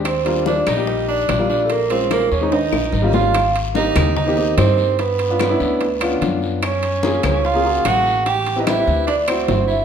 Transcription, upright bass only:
\new Staff \with { instrumentName = "Upright bass" } { \clef bass \time 4/4 \key aes \lydian \tempo 4 = 146 ees,4. bes,,4. bes,,4~ | bes,,4. ees,4 bes,,8 aes,,4~ | aes,,4. ees,4. g,4~ | g,4. d,4. ges,4~ |
ges,4. des,4. a,,4~ | a,,4. d,4. g,,4 | }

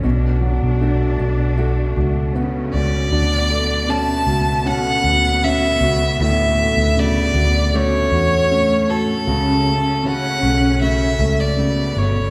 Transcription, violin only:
\new Staff \with { instrumentName = "Violin" } { \time 4/4 \key d \major \tempo 4 = 78 r2. r8 d''8~ | d''4 a''4 fis''4 e''4 | e''4 d''4 cis''4. a'8~ | a'4 fis''4 e''8. d''8. cis''8 | }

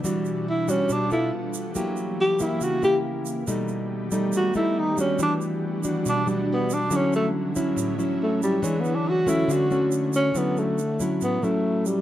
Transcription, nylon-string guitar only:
\new Staff \with { instrumentName = "Nylon-string guitar" } { \time 4/4 \key d \major \tempo 4 = 140 << { <g d' fis'>4 r8 <g d' fis'>4 <b f' a'>4. | <ais e' g'>4. <ais e' g'>4 <ais e' g'>4. | <g a dis'>4. <g a dis'>4 <g a dis'>4 <g d' fis'>8~ | <g d' fis'>4. <g d' fis'>4 <g d' fis'>4. |
<fis cis' e'>4. <fis cis' e'>4 <fis cis' e'>4. | <d' gis' cis''>4. <a cis' fis'>4 <a cis' fis'>4. | <fis cis' e'>4 r8 <fis cis' e'>4 <fis cis' e'>4. | } \\ { e2 b,4 r4 | fis2 cis2 | b,2 r2 | e2 b,2 |
d2 a,2 | e2 d2 | d2 a,2 | } >> }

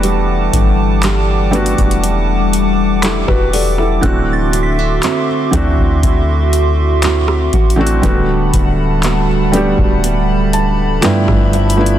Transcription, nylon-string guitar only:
\new Staff \with { instrumentName = "Nylon-string guitar" } { \time 4/4 \key g \major \tempo 4 = 60 <e g'>8 d'8 <a d' g'>8 g'8 d'4 <a d' g'>8 g'8 | <d fis'>8 d'16 e'16 <c' e' fis'>8 fis'8 e'4 <c' e' fis'>8 fis'8 | <d fis'>8 b8 <a b fis'>8 fis'8 b4 g,8 e'8 | }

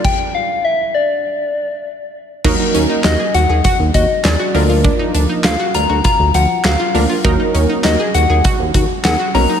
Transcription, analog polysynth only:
\new Staff \with { instrumentName = "Analog polysynth" } { \time 4/4 \key d \minor \tempo 4 = 100 r1 | \key ees \minor <ges bes ees' ges' bes'>4. r2 <f bes d' f' bes'>8~ | <f bes d' f' bes'>4 r2 r8 <f bes d' f' bes'>8 | <ges bes ees' ges' bes'>4. r2 <ges bes ees' ges' bes'>8 | }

